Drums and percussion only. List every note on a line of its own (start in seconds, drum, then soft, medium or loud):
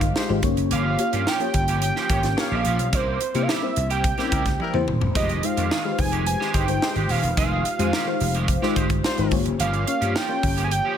0.01 kick medium
0.01 closed hi-hat soft
0.16 snare loud
0.43 kick medium
0.43 closed hi-hat medium
0.57 closed hi-hat soft
0.71 closed hi-hat medium
0.99 closed hi-hat medium
1.13 closed hi-hat soft
1.27 snare medium
1.40 closed hi-hat soft
1.54 kick medium
1.54 closed hi-hat medium
1.68 closed hi-hat soft
1.82 closed hi-hat medium
1.96 snare soft
2.09 kick loud
2.09 closed hi-hat medium
2.23 snare soft
2.23 closed hi-hat soft
2.38 snare loud
2.65 closed hi-hat medium
2.79 closed hi-hat medium
2.93 kick loud
2.93 closed hi-hat medium
3.21 closed hi-hat medium
3.35 closed hi-hat soft
3.49 snare loud
3.76 closed hi-hat medium
3.90 closed hi-hat soft
4.04 kick medium
4.04 closed hi-hat medium
4.18 snare soft
4.18 closed hi-hat soft
4.32 kick medium
4.32 closed hi-hat medium
4.45 kick medium
4.45 snare soft
4.45 closed hi-hat soft
4.60 high tom soft
4.74 mid tom medium
4.88 mid tom medium
5.01 floor tom medium
5.15 kick loud
5.15 closed hi-hat medium
5.29 closed hi-hat soft
5.43 closed hi-hat medium
5.57 closed hi-hat medium
5.71 snare loud
5.98 kick medium
5.98 open hi-hat medium
6.13 closed hi-hat soft
6.26 closed hi-hat medium
6.41 snare soft
6.54 kick medium
6.54 closed hi-hat medium
6.68 closed hi-hat soft
6.82 snare loud
6.96 closed hi-hat soft
7.09 open hi-hat medium
7.23 closed hi-hat medium
7.37 kick loud
7.37 closed hi-hat medium
7.65 closed hi-hat medium
7.79 closed hi-hat soft
7.93 snare medium
8.20 open hi-hat medium
8.34 closed hi-hat soft
8.48 kick medium
8.48 closed hi-hat medium
8.63 snare soft
8.76 kick medium
8.76 closed hi-hat medium
8.90 kick medium
8.90 closed hi-hat soft
9.04 snare loud
9.18 closed hi-hat soft
9.31 kick medium
9.31 open hi-hat medium
9.46 closed hi-hat medium
9.60 closed hi-hat medium
9.73 closed hi-hat soft
9.87 closed hi-hat medium
10.02 closed hi-hat soft
10.16 snare loud
10.43 kick medium
10.43 open hi-hat medium
10.57 closed hi-hat medium
10.71 closed hi-hat medium